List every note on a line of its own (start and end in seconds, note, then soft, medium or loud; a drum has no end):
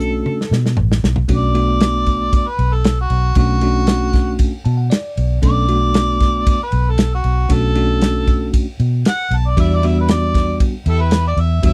0.00 0.22 B1 medium
0.00 0.37 A3 medium
0.00 0.37 C#4 medium
0.00 0.37 D4 medium
0.00 0.38 F#4 medium
0.00 0.74 A4 loud
0.00 closed hi-hat medium
0.26 high tom medium
0.41 snare medium
0.51 0.75 B2 medium
0.51 snare medium
0.66 snare medium
0.77 1.01 A1 medium
0.77 mid tom medium
0.92 snare medium
1.03 1.27 B1 medium
1.03 snare medium
1.16 floor tom medium
1.28 2.29 B1 loud
1.28 1.51 A3 medium
1.28 1.52 C#4 medium
1.28 1.52 D4 medium
1.28 1.52 F#4 medium
1.28 kick loud
1.28 ride medium
1.33 2.32 D5 medium
1.54 2.44 A3 medium
1.54 2.44 B3 medium
1.54 2.45 D4 medium
1.54 2.45 F#4 medium
1.54 ride medium
1.80 snare loud
1.80 ride medium
2.06 kick medium
2.06 ride medium
2.33 2.49 D5 medium
2.33 kick loud
2.33 ride medium
2.47 2.75 B4 medium
2.59 3.06 B1 medium
2.59 ride medium
2.74 2.98 A4 medium
2.84 snare loud
2.84 ride medium
3.01 3.36 F#4 medium
3.10 3.34 B1 medium
3.10 ride medium
3.35 4.36 B1 loud
3.35 3.59 A3 medium
3.35 3.59 C#4 medium
3.35 3.59 D4 medium
3.35 3.59 F#4 medium
3.35 4.38 F#4 medium
3.35 kick loud
3.35 ride medium
3.61 4.51 A3 medium
3.61 4.52 C#4 medium
3.61 4.52 D4 medium
3.61 4.52 F#4 medium
3.61 ride medium
3.87 snare loud
3.87 ride medium
4.13 kick medium
4.13 snare soft
4.13 ride medium
4.39 kick medium
4.39 ride medium
4.65 4.89 B2 medium
4.65 4.78 A5 medium
4.65 ride medium
4.77 4.90 F#5 medium
4.90 5.39 D5 medium
4.90 snare loud
4.90 ride medium
5.17 5.41 B1 medium
5.17 ride medium
5.42 6.42 B1 loud
5.42 5.65 A3 medium
5.42 5.65 C#4 medium
5.42 5.65 D4 medium
5.42 5.65 A4 medium
5.42 6.45 D5 loud
5.42 kick loud
5.42 ride medium
5.68 6.59 A3 medium
5.68 6.58 B3 medium
5.68 6.58 D4 medium
5.68 6.58 F#4 medium
5.68 ride medium
5.94 snare loud
5.94 ride medium
6.20 kick medium
6.20 snare soft
6.20 ride medium
6.46 6.60 D5 medium
6.46 kick loud
6.46 ride medium
6.63 6.92 B4 medium
6.72 7.20 B1 medium
6.72 ride medium
6.90 7.13 A4 medium
6.98 snare loud
6.98 ride medium
7.15 7.54 F#4 medium
7.24 7.48 B1 medium
7.24 ride medium
7.49 8.49 B1 medium
7.49 7.72 A3 medium
7.49 7.72 C#4 medium
7.49 7.72 D4 medium
7.49 7.72 F#4 medium
7.49 8.52 A4 medium
7.49 kick loud
7.49 ride medium
7.75 8.65 A3 medium
7.75 8.65 C#4 medium
7.75 8.65 D4 medium
7.75 8.66 F#4 medium
7.75 ride medium
8.01 snare loud
8.01 ride medium
8.27 kick medium
8.27 ride medium
8.53 kick loud
8.53 ride medium
8.80 9.03 B2 medium
8.80 ride medium
9.05 9.38 F#5 loud
9.05 snare loud
9.05 ride medium
9.31 9.54 B1 medium
9.31 ride medium
9.36 9.49 A5 medium
9.47 9.57 D5 medium
9.57 10.56 E2 loud
9.57 9.79 G3 medium
9.57 9.79 B3 medium
9.57 9.79 D4 medium
9.57 10.08 E4 medium
9.57 9.80 F#4 medium
9.57 10.09 D5 medium
9.57 9.76 E5 medium
9.57 kick loud
9.57 ride medium
9.74 9.87 D5 medium
9.83 10.73 G3 medium
9.83 10.73 B3 medium
9.83 10.73 D4 medium
9.83 10.73 F#4 medium
9.83 9.97 E5 medium
9.83 ride medium
10.01 10.14 B4 medium
10.08 10.60 D5 loud
10.08 snare loud
10.08 ride medium
10.34 kick medium
10.34 snare soft
10.34 ride medium
10.60 kick loud
10.60 ride medium
10.86 11.34 E2 medium
10.86 11.25 E4 medium
10.86 11.25 G4 medium
10.86 11.02 A4 loud
10.86 11.26 E5 medium
10.86 ride medium
11.01 11.25 B4 medium
11.11 snare loud
11.11 ride medium
11.27 11.41 D5 medium
11.37 11.61 E2 medium
11.37 11.64 E5 medium
11.37 ride medium
11.62 11.73 E2 medium
11.62 11.73 G3 medium
11.62 11.73 B3 medium
11.62 11.73 D4 medium
11.62 11.73 E4 medium
11.62 11.73 F#4 medium
11.62 11.73 C#5 medium
11.62 11.73 E5 medium
11.62 kick loud
11.62 ride medium